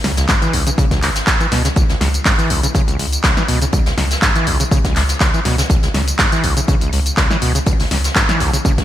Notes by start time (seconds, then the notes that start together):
0.04 C#2, snare, closed hi-hat, open hi-hat
0.17 C#2, snare, closed hi-hat, tambourine
0.28 G#2, kick, snare, clap, closed hi-hat, tambourine
0.42 E3, closed hi-hat, tambourine
0.53 B1 C#2, closed hi-hat, open hi-hat
0.67 C#3, closed hi-hat, tambourine
0.78 C#3, kick, closed hi-hat, tambourine
0.91 C#2, kick, snare, closed hi-hat, tambourine
1.02 G#1 C#2, snare, clap, closed hi-hat, open hi-hat
1.16 snare, closed hi-hat, tambourine
1.27 kick, snare, clap, closed hi-hat, tambourine
1.40 E3, closed hi-hat, tambourine
1.52 C#2 B2, snare, closed hi-hat, open hi-hat
1.65 C#3, snare, closed hi-hat, tambourine
1.76 C#2, kick, closed hi-hat, tambourine
1.89 C#2, snare, closed hi-hat, tambourine
2.01 C#2, snare, closed hi-hat, open hi-hat
2.14 closed hi-hat, tambourine
2.25 G#2, kick, snare, clap, open hi-hat, tambourine
2.38 E3, closed hi-hat, tambourine
2.50 B1 C#2, closed hi-hat, open hi-hat
2.63 C#3, closed hi-hat, tambourine
2.74 C#3, kick, closed hi-hat, tambourine
2.88 C#2, closed hi-hat, tambourine
2.99 C#2, closed hi-hat, open hi-hat
3.12 closed hi-hat, tambourine
3.24 C#2, kick, snare, clap, closed hi-hat, tambourine
3.37 E3, snare, closed hi-hat, tambourine
3.48 C#2 B2, closed hi-hat, open hi-hat
3.62 C#3, closed hi-hat, tambourine
3.72 C#2, kick, closed hi-hat, tambourine
3.86 C#2, snare, closed hi-hat, tambourine
3.97 C#2, snare, closed hi-hat, open hi-hat
4.11 snare, closed hi-hat, tambourine
4.22 G#2, kick, snare, clap, closed hi-hat, tambourine
4.35 E3, closed hi-hat, tambourine
4.47 B1 C#2, closed hi-hat, open hi-hat
4.60 C#3, closed hi-hat, tambourine
4.71 C#3, kick, closed hi-hat, tambourine
4.85 C#2, kick, snare, closed hi-hat, tambourine
4.96 C#2, snare, clap, closed hi-hat, open hi-hat
5.09 snare, closed hi-hat, tambourine
5.20 C#2, kick, snare, clap, closed hi-hat, tambourine
5.34 E3, closed hi-hat, tambourine
5.45 C#2 B2, snare, closed hi-hat, open hi-hat
5.58 C#3, snare, closed hi-hat, tambourine
5.70 C#2, kick, closed hi-hat, tambourine
5.83 C#2, snare, closed hi-hat, tambourine
5.94 C#2, snare, closed hi-hat, open hi-hat
6.08 closed hi-hat, tambourine
6.18 G#2, kick, snare, clap, open hi-hat, tambourine
6.32 E3, closed hi-hat, tambourine
6.43 B1 C#2, closed hi-hat, open hi-hat
6.57 C#3, closed hi-hat, tambourine
6.68 C#3, kick, closed hi-hat, tambourine
6.81 C#2, closed hi-hat, tambourine
6.93 C#2, closed hi-hat, open hi-hat
7.06 closed hi-hat, tambourine
7.17 C#2, kick, snare, clap, closed hi-hat, tambourine
7.30 E3, snare, closed hi-hat, tambourine
7.41 C#2 B2, closed hi-hat, open hi-hat
7.55 C#3, closed hi-hat, tambourine
7.66 C#2, kick, closed hi-hat, tambourine
7.79 C#2, snare, open hi-hat, tambourine
7.91 C#2, snare, closed hi-hat, open hi-hat
8.04 snare, closed hi-hat, tambourine
8.15 G#2, kick, snare, clap, closed hi-hat, tambourine
8.29 E3, snare, closed hi-hat, tambourine
8.40 B1 C#2, closed hi-hat, open hi-hat
8.53 C#3, closed hi-hat, tambourine
8.65 C#3, kick, closed hi-hat, tambourine
8.78 C#2, kick, snare, closed hi-hat, tambourine